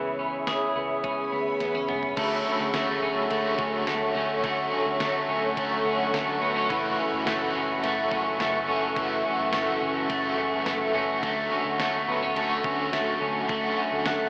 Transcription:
Already playing: picked electric bass C#2, clean electric guitar E3 B3 C#4 G#4, ambient pad G#4 C#5 E5 B5
0.19 clean electric guitar C#4
0.47 clean electric guitar G#4, snare, closed hi-hat
0.76 picked electric bass C#2, clean electric guitar B3
1.04 picked electric bass C#2, clean electric guitar C#4, synth bell G#5, kick, closed hi-hat
1.24 synth bell B5
1.32 picked electric bass D2, clean electric guitar B3
1.60 picked electric bass E2, clean electric guitar B3, snare, closed hi-hat
1.75 clean electric guitar C#4, high tom
1.89 picked electric bass C#2, clean electric guitar B3, mid tom
2.03 floor tom
2.17 picked electric bass D2, overdriven electric guitar D3 F#3 A3 C#4 F#4, clean electric guitar A3, ambient pad A4 C#5 F#5 C#6, synth bell B5, kick, crash, ride
2.36 synth bell E6
2.46 clean electric guitar C#4
2.60 picked electric bass D2
2.73 picked electric bass D2, overdriven electric guitar F#3 A3 C#4 F#4, clean electric guitar A3, snare, ride, tambourine
3.02 picked electric bass D2, clean electric guitar C#4
3.30 picked electric bass D2, overdriven electric guitar D3 F#3 A3 C#4 F#4, clean electric guitar A3, ride
3.59 picked electric bass D2, clean electric guitar C#4, kick
3.87 picked electric bass D2, clean electric guitar A3, snare, ride, tambourine
4.14 picked electric bass D2, overdriven electric guitar A3 C#4 F#4, clean electric guitar C#4
4.43 picked electric bass D2, overdriven electric guitar D3 F#3 A3 C#4 F#4, clean electric guitar A3, kick, ride
4.72 clean electric guitar C#4
4.86 picked electric bass D2
5.00 picked electric bass D2, overdriven electric guitar F#3 A3 C#4 F#4, clean electric guitar A3, snare, ride, tambourine
5.29 picked electric bass D2, clean electric guitar C#4
5.56 picked electric bass D2, overdriven electric guitar D3 F#3 A3 C#4 F#4, clean electric guitar A3, kick, ride
5.85 picked electric bass D2, clean electric guitar C#4
6.13 picked electric bass D2, clean electric guitar A3, snare, ride, tambourine
6.41 picked electric bass D2, overdriven electric guitar A3 C#4 F#4, clean electric guitar B3
6.56 clean electric guitar C#4
6.69 picked electric bass F#1, overdriven electric guitar F#2 C#3 E3 A3 C#4 F#4, clean electric guitar E3, ambient pad A4 E5, synth bell B5, kick, ride
6.99 clean electric guitar C#4
7.12 picked electric bass F#1
7.25 picked electric bass F#1, overdriven electric guitar E3 A3 C#4 F#4, clean electric guitar A3, snare, ride, tambourine
7.55 picked electric bass F#1, clean electric guitar C#4
7.82 picked electric bass F#1, overdriven electric guitar F#2 C#3 E3 A3 C#4 F#4, clean electric guitar A3, ride
8.12 picked electric bass F#1, clean electric guitar C#4, kick
8.40 picked electric bass F#1, clean electric guitar A3, snare, ride, tambourine
8.67 picked electric bass F#1, overdriven electric guitar E3 A3 C#4 F#4, clean electric guitar C#4
8.96 picked electric bass F#1, overdriven electric guitar F#2 C#3 E3 A3 C#4 F#4, clean electric guitar E3, kick, ride
9.25 clean electric guitar C#4
9.39 picked electric bass F#1
9.52 picked electric bass F#1, overdriven electric guitar E3 A3 C#4 F#4, clean electric guitar A3, snare, ride, tambourine
9.81 picked electric bass F#1, clean electric guitar C#4
10.09 picked electric bass F#1, overdriven electric guitar F#2 C#3 E3 A3 C#4 F#4, clean electric guitar A3, kick, ride
10.38 picked electric bass F#1, clean electric guitar C#4
10.66 picked electric bass F#1, clean electric guitar A3, snare, ride, tambourine
10.93 picked electric bass F#1, overdriven electric guitar E3 A3 C#4 F#4, clean electric guitar C#4
11.22 picked electric bass D2, overdriven electric guitar D3 F#3 A3 C#4 F#4, clean electric guitar A3, ambient pad A4 F#5, kick, ride
11.52 clean electric guitar C#4
11.65 picked electric bass D2
11.78 picked electric bass D2, overdriven electric guitar F#3 A3 C#4 F#4, clean electric guitar A3, snare, ride, tambourine
12.08 picked electric bass D2, clean electric guitar B3
12.23 clean electric guitar C#4
12.34 picked electric bass D2, overdriven electric guitar D3 F#3 A3, clean electric guitar A3, ride
12.39 overdriven electric guitar C#4 F#4
12.64 picked electric bass D2, clean electric guitar C#4, kick
12.93 picked electric bass D2, clean electric guitar A3, snare, ride, tambourine
13.21 picked electric bass D2, clean electric guitar C#4
13.48 picked electric bass D2, overdriven electric guitar D3 F#3 A3, clean electric guitar A3, ambient pad D6, kick, ride
13.52 overdriven electric guitar C#4 F#4
13.78 clean electric guitar C#4
13.92 picked electric bass D2
14.06 picked electric bass D2, clean electric guitar A3, synth bell F#6, snare, ride, tambourine

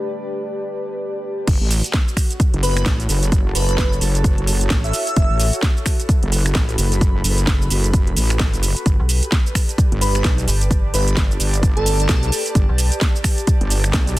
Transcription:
Already playing: ambient pad A3 D4 G4 B4, analog synth pad G4 B4 D5 A5
1.47 wobble bass F#1, analog synth pad F#4, kick, closed hi-hat, crash, shaker
1.61 wobble bass A1
1.71 open hi-hat, shaker
1.84 closed hi-hat, shaker
1.94 kick, snare, closed hi-hat, shaker
2.01 analog synth pad A4
2.08 shaker
2.16 analog synth pad C#5, finger snap, kick, open hi-hat, shaker
2.31 closed hi-hat, shaker
2.40 kick, closed hi-hat, shaker
2.53 wobble bass F#1, closed hi-hat
2.63 digital synth lead B4, open hi-hat, shaker
2.77 finger snap, closed hi-hat, shaker
2.86 wobble bass A1, kick, snare, closed hi-hat, shaker
2.93 analog synth pad A5
3.00 closed hi-hat, shaker
3.09 wobble bass F#1, open hi-hat, shaker
3.23 closed hi-hat, shaker
3.32 kick, closed hi-hat, shaker
3.55 wobble bass F#1, digital synth lead B4, open hi-hat, shaker
3.69 digital synth lead B4, closed hi-hat, shaker
3.78 digital synth lead B4, kick, snare, closed hi-hat, shaker
3.93 shaker
4.01 wobble bass F#1, open hi-hat, shaker
4.15 closed hi-hat, shaker
4.24 kick, closed hi-hat, shaker
4.38 wobble bass F#1, closed hi-hat
4.47 open hi-hat, shaker
4.61 closed hi-hat, shaker
4.70 wobble bass A1, kick, snare, closed hi-hat, shaker
4.84 digital synth lead E5, closed hi-hat, shaker
4.93 open hi-hat, shaker
5.07 closed hi-hat, shaker
5.16 wobble bass F#1, kick, closed hi-hat, shaker
5.30 wobble bass A1
5.40 open hi-hat, shaker
5.53 closed hi-hat, shaker
5.63 kick, snare, closed hi-hat, shaker
5.75 analog synth pad B4, shaker
5.86 finger snap, kick, open hi-hat, shaker
5.91 analog synth pad B5
6.00 closed hi-hat, shaker
6.09 kick, closed hi-hat, shaker
6.23 wobble bass F#1, closed hi-hat
6.32 open hi-hat, shaker
6.46 finger snap, closed hi-hat, shaker
6.55 wobble bass A1, kick, snare, closed hi-hat, shaker
6.69 closed hi-hat, shaker
6.78 wobble bass F#1, open hi-hat, shaker
6.92 closed hi-hat, shaker
7.01 kick, closed hi-hat, shaker
7.24 wobble bass F#1, open hi-hat, shaker
7.38 closed hi-hat, shaker
7.47 kick, snare, closed hi-hat, shaker
7.62 shaker
7.70 wobble bass F#1, open hi-hat, shaker
7.84 closed hi-hat, shaker
7.94 kick, closed hi-hat, shaker
8.07 closed hi-hat
8.17 wobble bass A1, open hi-hat, shaker
8.30 finger snap, closed hi-hat, shaker
8.40 kick, snare, closed hi-hat, shaker
8.53 wobble bass F#1, closed hi-hat, shaker
8.63 open hi-hat, shaker
8.77 closed hi-hat, shaker
8.86 wobble bass G1, analog synth pad G4, kick, closed hi-hat, shaker
9.00 fm bass B1
9.09 open hi-hat, shaker
9.20 analog synth pad A5, closed hi-hat, shaker
9.27 analog synth pad D5
9.32 kick, snare, closed hi-hat, shaker
9.47 shaker
9.55 finger snap, kick, open hi-hat, shaker
9.69 closed hi-hat, shaker
9.78 kick, closed hi-hat, shaker
9.92 wobble bass G1, closed hi-hat
10.01 digital synth lead B4, open hi-hat, shaker
10.15 finger snap, closed hi-hat, shaker
10.24 wobble bass B1, kick, snare, closed hi-hat, shaker
10.38 closed hi-hat, shaker
10.47 fm bass G1, open hi-hat, shaker
10.61 closed hi-hat, shaker
10.71 kick, closed hi-hat, shaker
10.94 wobble bass G1, digital synth lead B4, open hi-hat, shaker
11.08 closed hi-hat, shaker
11.17 kick, snare, closed hi-hat, shaker
11.31 shaker
11.40 wobble bass G1, open hi-hat, shaker
11.54 closed hi-hat, shaker
11.63 kick, closed hi-hat, shaker
11.76 wobble bass G1, digital synth lead A4, closed hi-hat
11.86 open hi-hat, shaker
12.00 closed hi-hat, shaker
12.09 wobble bass B1, kick, snare, closed hi-hat, shaker
12.23 closed hi-hat, shaker
12.32 open hi-hat, shaker
12.46 closed hi-hat, shaker
12.55 wobble bass G1, kick, closed hi-hat, shaker
12.69 fm bass B1
12.78 open hi-hat, shaker
12.92 closed hi-hat, shaker
13.01 kick, snare, closed hi-hat, shaker
13.16 shaker
13.24 finger snap, kick, open hi-hat, shaker
13.38 closed hi-hat, shaker
13.47 kick, closed hi-hat, shaker
13.61 wobble bass G1, closed hi-hat
13.70 open hi-hat, shaker
13.84 finger snap, closed hi-hat, shaker
13.93 wobble bass B1, kick, snare, closed hi-hat, shaker
14.07 closed hi-hat, shaker

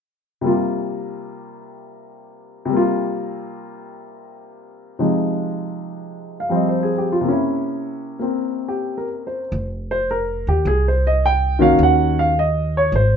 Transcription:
0.41 grand piano C3 G3 A#3
0.47 grand piano F4
2.65 grand piano C3 G3
2.73 grand piano A#3 F4
4.99 grand piano C3 F3 G#3 D#4
6.40 grand piano F5
6.49 grand piano F3 G3 C4
6.55 grand piano D#5
6.69 grand piano C5
6.83 grand piano G#4
6.98 grand piano G4
7.12 grand piano F4
7.21 grand piano C3 A#3
7.28 grand piano C#4 E4
8.19 grand piano A#3 C4
8.68 grand piano G4
8.98 grand piano A#4
9.27 grand piano C5
9.52 upright bass F1
9.91 grand piano C5
10.11 grand piano A#4
10.47 upright bass D#2, grand piano G4
10.65 upright bass C2, grand piano G#4
10.88 grand piano C5
11.07 grand piano D#5
11.26 grand piano G5
11.59 grand piano D#3 A#3 C#4 F#4 F5
11.79 upright bass D#2
11.83 grand piano F#5
12.19 grand piano F5
12.39 grand piano D#5
12.77 grand piano C#5
12.92 upright bass G#1, grand piano C5

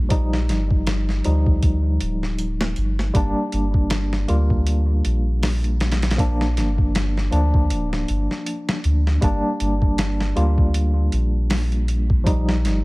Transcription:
Already playing: sub bass A#1, tine electric piano G3 A#3 F4
0.09 tine electric piano F3 G3 D#4, kick, closed hi-hat
0.33 snare
0.49 sub bass G1, snare, closed hi-hat
0.71 kick
0.87 snare, closed hi-hat
1.09 snare
1.24 sub bass D2, tine electric piano F3 G3 D#4, closed hi-hat
1.46 kick
1.63 kick, closed hi-hat
2.00 sub bass D1, closed hi-hat
2.23 snare
2.39 closed hi-hat
2.61 snare
2.76 sub bass G1, closed hi-hat
2.99 snare
3.13 sub bass G1, tine electric piano G3 A#3 D4, kick, closed hi-hat
3.52 sub bass G1, closed hi-hat
3.74 kick
3.90 snare, closed hi-hat
4.13 snare
4.28 sub bass D2, tine electric piano G3 A#3 F4, closed hi-hat
4.50 kick
4.67 closed hi-hat
5.05 sub bass A#1, closed hi-hat
5.43 snare, open hi-hat
5.64 closed hi-hat
5.80 snare, closed hi-hat
5.92 snare, closed hi-hat
6.02 snare, closed hi-hat
6.11 snare, closed hi-hat
6.17 tine electric piano F3 A#3 D4, kick, closed hi-hat
6.41 snare
6.57 sub bass G1, snare, closed hi-hat
6.78 kick
6.95 snare, closed hi-hat
7.17 snare
7.31 sub bass D2, tine electric piano F3 A#3 D4, closed hi-hat
7.54 kick
7.70 sub bass D1, closed hi-hat
7.93 snare
8.08 sub bass G1, closed hi-hat
8.31 snare
8.46 closed hi-hat
8.69 snare
8.84 sub bass D2, closed hi-hat
9.07 snare
9.21 sub bass G1, tine electric piano G3 A#3 D4, kick, closed hi-hat
9.60 sub bass G1, closed hi-hat
9.82 kick
9.98 snare, closed hi-hat
10.20 snare
10.35 sub bass D2, tine electric piano G3 A#3 F4, closed hi-hat
10.58 kick
10.74 closed hi-hat
11.12 sub bass A#1, closed hi-hat
11.50 snare, open hi-hat
11.72 closed hi-hat
11.88 closed hi-hat
12.10 kick
12.24 tine electric piano F3 G3 D#4, kick, closed hi-hat
12.49 snare
12.64 sub bass G1, snare, closed hi-hat

